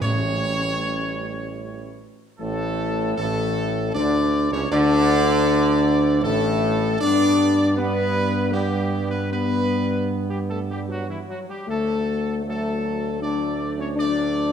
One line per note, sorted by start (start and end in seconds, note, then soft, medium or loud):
0.00 2.07 A1 medium
0.00 1.17 A2 medium
0.00 2.07 E3 medium
0.00 2.04 G3 medium
0.00 1.97 C#4 medium
0.00 1.96 C#5 loud
2.39 3.14 A1 loud
2.39 3.14 A2 loud
2.39 3.14 A3 loud
2.39 3.13 A4 medium
3.17 3.90 A1 loud
3.17 3.91 A2 medium
3.17 3.91 A3 loud
3.17 3.91 A4 loud
3.94 4.48 D2 medium
3.94 4.49 D3 medium
3.94 4.48 D4 loud
3.94 4.48 D5 loud
4.51 4.69 C#2 medium
4.51 4.61 C#3 medium
4.51 4.61 C#4 loud
4.51 4.70 C#5 medium
4.71 6.24 D2 loud
4.71 6.19 D3 loud
4.71 6.19 D4 loud
4.71 6.19 D5 loud
6.22 7.01 A1 loud
6.22 7.01 A2 loud
6.22 6.97 A3 loud
6.22 6.97 A4 loud
7.01 11.32 G2 loud
7.01 7.72 G3 medium
7.01 7.73 B3 medium
7.01 7.73 D4 loud
7.01 7.73 D5 loud
7.76 8.49 G3 medium
7.76 8.49 B3 medium
7.76 8.49 B3 loud
7.76 8.53 B4 loud
8.52 9.27 G3 medium
8.52 9.12 G3 loud
8.52 9.27 B3 medium
8.52 9.08 G4 medium
9.11 9.21 B3 medium
9.11 9.30 B4 medium
9.31 11.31 G3 medium
9.31 11.31 B3 medium
9.31 10.26 B3 loud
9.31 10.12 B4 medium
10.29 10.39 G3 medium
10.29 10.38 G4 medium
10.50 10.59 A3 medium
10.50 10.59 A4 medium
10.70 10.88 G3 medium
10.70 10.79 G4 medium
10.89 11.07 F#3 medium
10.89 11.08 F#4 medium
11.08 11.18 E3 medium
11.08 11.18 E4 medium
11.28 11.47 F#3 medium
11.28 11.39 F#4 medium
11.49 11.67 G3 medium
11.49 11.67 G4 medium
11.67 14.52 D2 medium
11.67 12.42 F#3 medium
11.67 12.41 A3 loud
11.67 12.42 A3 medium
11.67 12.42 A4 medium
12.45 13.18 F#3 medium
12.45 13.17 A3 medium
12.45 13.18 A3 medium
12.45 13.18 A4 medium
13.22 13.94 F#3 medium
13.22 13.94 A3 medium
13.22 13.75 D4 medium
13.22 13.75 D5 medium
13.78 13.96 C#4 medium
13.78 13.88 C#5 medium
13.96 14.52 F#3 medium
13.96 14.52 A3 medium
13.96 14.52 D4 loud
13.96 14.52 D5 medium